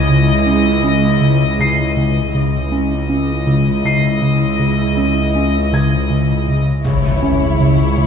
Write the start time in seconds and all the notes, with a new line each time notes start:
Already playing: C#2 G#3 E4 D#5 G#6
0.09 C#3
0.47 C#4
0.84 C#4
1.21 C#3
1.59 C#3 C7
1.97 C#3
2.34 C#2 C#3 G#3 E4 D#5
2.72 C#4
3.09 C#4
3.47 C#3
3.84 C#3 C7
4.22 C#3
4.60 C#3
4.97 C#4
5.35 C#4
5.73 C#3 G#6
6.10 C#3
6.48 C#3
6.84 C#2 C#3 G#3 E4 C#5, impact
7.23 C#4
7.60 C#3
7.98 C#3